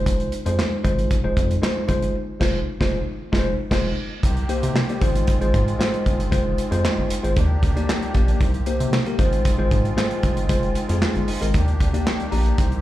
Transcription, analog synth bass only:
Already playing: F1
0.46 F2
0.85 G#1
1.24 F1
1.37 F2
1.89 G1
2.41 F1
2.81 F1
3.33 F1
3.71 F1
4.23 C2
4.63 C3
5.02 G#1
5.41 G#1
5.54 G#2
6.06 G1
6.32 F1
6.72 F2
6.98 G1
7.24 G#1
7.37 D#2
7.63 D2
8.15 A#1
8.41 C2
8.80 C3
9.19 G#1
9.59 G#1
9.71 G#2
10.23 G1
10.49 F1
10.89 F2
11.16 G1
11.42 G#1
11.54 D#2
11.81 D2
12.32 A#1
12.58 C2

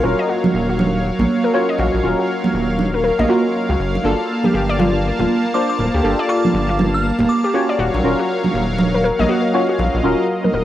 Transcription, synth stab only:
0.03 C#4 F4 F#4 A#4
1.53 C#4 F4 F#4 C#5
2.03 C#4 F4 F#4 A#4
3.28 C#4 F4 F#4 A#4
4.03 A#3 D4 F4 A4
5.53 A#3 D4 F4 C5
6.03 A#3 D4 F4 A4
7.54 C#4 F4 F#4 C#5
8.03 C#4 F4 F#4 A#4
9.53 C#4 F4 F#4 C#5
10.03 C#4 F4 F#4 A#4

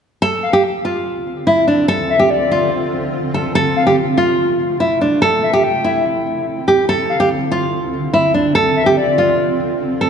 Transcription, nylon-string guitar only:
0.22 A4
0.53 G4
0.85 F4
1.47 E4
1.68 D4
1.88 A4
2.19 G4
2.51 F4
3.34 A4
3.55 A4
3.87 G4
4.18 F4
4.80 E4
5.01 D4
5.22 A4
5.53 G4
5.84 E4
6.68 G4
6.89 A4
7.20 G4
7.52 F4
8.14 E4
8.34 D4
8.55 A4
8.86 G4
9.18 F4
10.01 A4

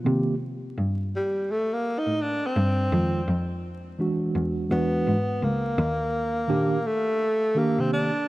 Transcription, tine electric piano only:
0.04 D#3 A#3 C4 G4
2.92 D#3 G#3 C4 F4
3.99 E3 G#3 D4 F#4
4.69 E3 G#3 D4 F#4
6.48 D#3 A#3 D4 G4
7.55 D#3 A#3 D4 G4

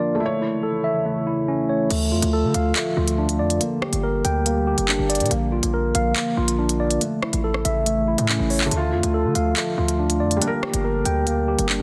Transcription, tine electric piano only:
Already playing: A#3 D4 F4 A#4 F5
0.00 D5
0.20 A3
0.42 E4
0.63 A4
0.84 E5
1.06 A3
1.27 E4
1.48 C#4
1.69 C#5
1.91 A3
2.12 F4
2.33 A4
2.55 F5
2.76 A3
2.97 F4
3.18 D4
3.39 D5
3.61 A#3
3.82 G4
4.03 A#4
4.25 G5
4.46 A#3
4.67 G4
4.88 D4
5.10 D5
5.31 A#3
5.52 F4
5.74 A#4
5.95 F5
6.16 A#3
6.37 F4
6.59 D4
6.80 D5
7.01 A3
7.23 E4
7.44 A4
7.65 E5
7.86 A3
8.08 E4
8.29 C#4
8.50 C#5
8.71 A3
8.93 F4
9.14 A4
9.35 F5
9.56 A3
9.78 F4
9.99 D4
10.20 D5
10.42 A#3
10.63 G4
10.84 A#4
11.05 G5
11.27 A#3
11.48 G4
11.69 D4

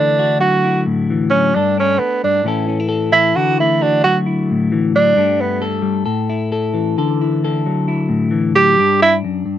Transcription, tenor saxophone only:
Already playing: D4
0.40 F#4
1.30 C#4
1.55 D4
1.79 C#4
1.98 B3
2.24 D4
3.12 E4
3.36 F#4
3.60 E4
3.82 D4
4.04 F#4
4.95 D4
5.41 B3
8.55 G4
9.02 E4

